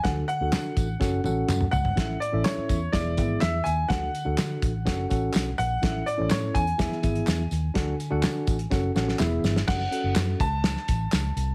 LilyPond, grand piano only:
\new Staff \with { instrumentName = "Grand piano" } { \time 4/4 \key fis \minor \tempo 4 = 125 fis''8 fis''2. fis''8~ | fis''8 d''8 cis''4 d''4 e''8 gis''8 | fis''2.~ fis''8 fis''8~ | fis''8 d''8 cis''8 gis''2~ gis''8~ |
gis''2. r4 | fis''4 r8 a''2~ a''8 | }